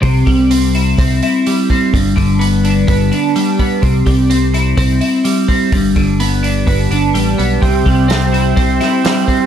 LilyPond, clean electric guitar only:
\new Staff \with { instrumentName = "Clean electric guitar" } { \time 4/4 \key c \major \tempo 4 = 127 c8 g8 c'8 e'8 c'8 e'8 g8 c'8 | g,8 d8 b8 d'8 b8 d'8 g8 b8 | c8 g8 c'8 e'8 c'8 e'8 g8 c'8 | g,8 d8 b8 d'8 b8 d'8 g8 b8 |
c8 g8 c'8 e'8 c'8 e'8 g8 c'8 | }